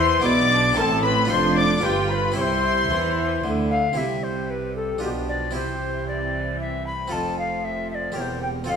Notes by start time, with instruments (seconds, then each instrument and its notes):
Already playing: double bass section E2, harpsichord E3 E4 G4, cello section E3, viola section E4, recorder C5, violin section C6
0.20 harpsichord B3 E4 G#4
0.24 double bass section B1, harpsichord B2, cello section B2, viola section E4, recorder D5, violin section D6
0.51 viola section D4
0.73 harpsichord C4 E4 A4
0.77 double bass section A1, harpsichord A2, cello section A2, viola section C4, recorder A#4, violin section A5
0.82 recorder A4
1.03 recorder B4, violin section B5
1.25 harpsichord D4 F4 A4, violin section C6
1.30 double bass section F1, harpsichord F2, cello section F2, viola section D4, recorder C5, violin section C6
1.57 recorder D5, violin section D6
1.78 harpsichord D4 F4 B4
1.83 double bass section G1, harpsichord G2, cello section G2, viola section F4, recorder G4, violin section G5
2.09 recorder C5, violin section B5
2.15 recorder B4
2.32 harpsichord C4 E4 C5
2.36 double bass section C2, harpsichord C3, cello section C3, viola section E4, recorder C#5, violin section C6
2.41 recorder C5
2.90 double bass section E2, harpsichord E3, cello section E3
3.43 double bass section D2, harpsichord D3, cello section D3
3.71 recorder F5
3.93 harpsichord C4 E4 G4, recorder E5
3.97 double bass section C2, cello section C3, harpsichord C3, viola section G3, violin section C4 G4
4.23 recorder C5
4.50 recorder B4
4.76 recorder A4
4.98 harpsichord D4 F4 G4
5.03 double bass section B1, cello section B2, harpsichord B2, viola section F3, violin section D4, recorder G4
5.28 recorder D5
5.51 harpsichord C4 E4 G4
5.55 double bass section C2, cello section C3, harpsichord C3, viola section E3, violin section C4, recorder C5
6.08 recorder D5
6.61 recorder E5
6.86 recorder B5
7.08 harpsichord C4 F4 A4
7.12 double bass section F1, harpsichord F2, cello section F2, viola section F3, violin section A4, recorder A5
7.38 recorder F5
7.64 recorder E5
7.91 recorder E5
7.95 recorder D5
8.12 harpsichord C4 G4 A#4
8.16 double bass section E1, cello section E2, harpsichord E2, viola section G3, violin section A#4, recorder C5 C#5
8.42 recorder G5
8.64 harpsichord C4 F4 A4
8.68 double bass section F1, cello section F2, harpsichord F2, viola section F3, violin section C4 A4, recorder F5